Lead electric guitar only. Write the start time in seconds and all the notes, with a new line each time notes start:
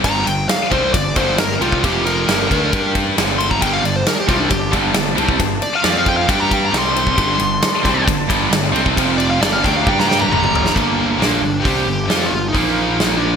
0.05 A#5
0.26 G5
0.49 F5
0.71 C5
0.94 D5
1.17 C5
1.39 A#4
1.61 F4
1.85 G4
2.06 A#4
3.39 C6
3.50 A#5
3.62 G5
3.73 F5
3.85 D5
3.96 C5
4.07 A#4
4.20 G4
4.28 F4
4.40 D4
4.49 G4
5.63 D5
5.75 F5
5.85 D5
5.98 F5
6.08 G5
6.17 F5
6.30 G5
6.40 A#5
6.53 G5
6.65 A#5
6.77 C6
9.18 D5
9.31 F5
9.41 D5
9.52 F5
9.65 G5
9.76 F5
9.89 G5
9.99 A#5
10.09 G5
10.21 A#5
10.33 A#5
10.75 A#3
11.19 D4
11.61 G4
12.26 F4
12.49 D#4
13.17 D4